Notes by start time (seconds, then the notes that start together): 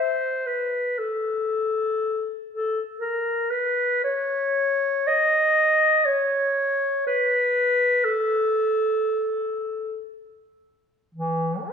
Already playing: C5
0.46 B4
0.98 A4
2.51 A4
3.00 A#4
3.51 B4
4.04 C#5
5.07 D#5
6.06 C#5
7.07 B4
8.05 A4
11.15 E3